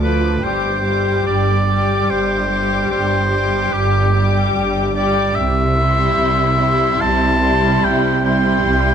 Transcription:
Already playing: D2
0.01 F3 A4 B4 D6
0.42 G1 G2 G3 G4 C5 D6
0.83 G3 G4 D6
1.25 G1 G2 D5
1.68 G3 G4 D6
2.09 G1 G2 C5
2.50 G3 G4 D6
2.91 G1 G2 C5
3.30 G3 G4 D6
3.73 G1 G2 G4
4.14 G3 G4 D6
4.56 G1 G2
4.96 G3 G4 D5 D6
5.36 C2 C3 E5
5.76 E4 C6
6.15 C2 C3
6.58 G3 E4 C6
7.00 C2 C3 A5
7.42 G3 E4 C6
7.83 C2 C3 G5
8.24 G3 E4 G5 C6
8.64 C2 C3

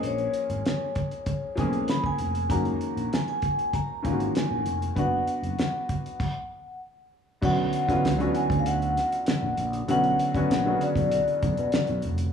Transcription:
Already playing: F3 G#3 A#3 C#4 G#4
0.03 A#1 C#5, closed hi-hat
0.18 closed hi-hat
0.34 closed hi-hat
0.50 G#1, closed hi-hat
0.66 snare, closed hi-hat
0.95 kick, closed hi-hat
1.11 closed hi-hat
1.26 kick, closed hi-hat
1.55 B1 F3 G#3 A#3 C#4 G#4, kick, snare, closed hi-hat
1.73 closed hi-hat
1.88 B5, snare, closed hi-hat
2.04 G#5, kick
2.18 F1, closed hi-hat
2.35 closed hi-hat
2.49 F#1 D#3 G#3 A#3 C#4 F#4 A#5, kick, closed hi-hat
2.65 closed hi-hat
2.81 closed hi-hat
2.97 A#1, closed hi-hat
3.13 G#5, snare, closed hi-hat
3.28 G#5, closed hi-hat
3.42 kick, closed hi-hat
3.59 closed hi-hat
3.73 A#5, kick, closed hi-hat
4.02 G#1 D#3 G#3 A#3 C#4 F4, kick, closed hi-hat
4.12 F#4
4.20 closed hi-hat
4.35 G#5, snare, closed hi-hat
4.51 A#1
4.66 F1, closed hi-hat
4.82 closed hi-hat
4.96 F#1 B3 D4 F#4 F#5, kick, closed hi-hat
5.27 closed hi-hat
5.43 F#1, closed hi-hat
5.59 snare, closed hi-hat
5.89 kick, closed hi-hat
6.06 closed hi-hat
6.20 kick, crash
7.42 B1 D3 F#3 B3 C#4 F#4 F#5, kick, crash
7.73 closed hi-hat
7.88 D3 F#3 B3 C#4 F4, kick, closed hi-hat
8.05 C#2, snare, closed hi-hat
8.18 D3 F#3 B3 C#4 F#4, closed hi-hat
8.35 G#5, closed hi-hat
8.50 D2, kick, closed hi-hat
8.59 F5
8.66 F#5, closed hi-hat
8.82 closed hi-hat
8.97 snare, closed hi-hat
9.12 closed hi-hat
9.26 snare, closed hi-hat
9.43 A#1
9.57 A#1, closed hi-hat
9.73 closed hi-hat
9.88 B1 D3 F#3 B3 C#4 F#4 F#5, closed hi-hat
10.04 closed hi-hat
10.19 closed hi-hat
10.34 D3 F#3 B3 C#4 F#4, kick, closed hi-hat
10.50 A#1, snare, closed hi-hat
10.65 C#3 D3 F#3 B3 F#4
10.81 D5, closed hi-hat
10.96 B1, kick, closed hi-hat
11.12 closed hi-hat
11.28 closed hi-hat
11.43 B1, kick, closed hi-hat
11.57 B2, closed hi-hat
11.72 snare, closed hi-hat
11.87 B1, closed hi-hat
12.02 F1, closed hi-hat
12.18 closed hi-hat

